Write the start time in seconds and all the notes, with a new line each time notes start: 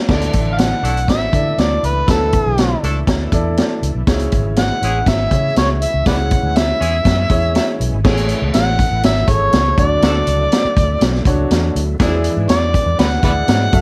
0.08 D2 D3 E3 A3 D4 D#4 E4 A4 D5, kick, snare, crash
0.15 E4
0.21 closed hi-hat
0.33 A1, kick, closed hi-hat
0.52 F5
0.58 F#5, snare, closed hi-hat
0.83 B1 A3 D4 E4 A4, closed hi-hat
0.97 closed hi-hat
1.08 A1 E5, kick, snare, closed hi-hat
1.33 D3 E4 A4 D5, kick, closed hi-hat
1.58 D2 D5, snare, closed hi-hat
1.83 C#2 B4, closed hi-hat
2.07 D2 D3 E4 A4 B4, kick, snare, closed hi-hat
2.33 kick, closed hi-hat
2.46 B1
2.58 snare, closed hi-hat
2.83 C#2 A3 D4 E4 A4, closed hi-hat
3.07 D2, kick, snare, closed hi-hat
3.32 E2 E4 A4 D5, kick, closed hi-hat
3.57 snare, closed hi-hat
3.82 C#2, closed hi-hat
3.95 B1
4.07 C#2 C#3 G#3 C#4 D#4 G#4 C#5, kick, snare, closed hi-hat
4.13 E4
4.19 closed hi-hat
4.32 G#1, kick, closed hi-hat
4.56 F#5, snare, closed hi-hat
4.82 A1 G#3 C#4 E4 G#4, closed hi-hat
5.06 G#1 E5, kick, snare, closed hi-hat
5.31 C#3 E4 G#4 C#5, kick, closed hi-hat
5.56 C#2 C#5, snare, closed hi-hat
5.82 E5, closed hi-hat
5.94 C#2
6.06 C#3 E4 G#4 B4 C#5 D5 F#5, kick, snare, closed hi-hat
6.31 kick, closed hi-hat
6.43 D2
6.56 E5, snare, closed hi-hat
6.80 E2 G#3 C#4 E4 G#4, closed hi-hat
7.05 F#2, kick, snare, closed hi-hat
7.30 E2 E4 G#4 C#5, kick, closed hi-hat
7.55 snare, closed hi-hat
7.80 B1, closed hi-hat
7.93 G#1
8.04 A1 A2 E3 G#3 A3 C#4 E4 G#4 C#5, kick, snare, crash
8.17 closed hi-hat
8.29 closed hi-hat
8.42 C#2
8.54 A1 F#5, snare, closed hi-hat
8.79 kick, closed hi-hat
8.91 A1
9.03 G#1 E5, snare, closed hi-hat
9.16 snare
9.28 G#1 G#4 A4 C#5, kick, closed hi-hat
9.53 C#2, snare, closed hi-hat
9.77 D2 D3 F#3 D4 F#4 D5, kick, closed hi-hat
10.02 D2 A3 D4 F#4 A4, snare, closed hi-hat
10.27 C#2, closed hi-hat
10.52 snare, closed hi-hat
10.65 muted fingered electric bass stroke
10.77 D2, kick, closed hi-hat
11.01 B1, snare, closed hi-hat
11.15 snare
11.25 C#2 D4 F#4 C#5, kick, closed hi-hat
11.51 E2, snare, closed hi-hat
11.75 D2, closed hi-hat
12.00 E2 E3 G#3 B3 D4 E4 G#4 D5, kick, snare, closed hi-hat
12.24 closed hi-hat
12.37 G#2
12.49 E2 D5, snare, closed hi-hat
12.74 kick, closed hi-hat
12.86 E2
12.99 D2 B4 D5 F#5, snare, closed hi-hat
13.12 snare
13.23 D2 E4 G#4 B4 D5 F#5, kick, closed hi-hat
13.48 G#2, snare, closed hi-hat
13.72 F#2 F#3 A3 E4 F#4 A4 E5, kick, closed hi-hat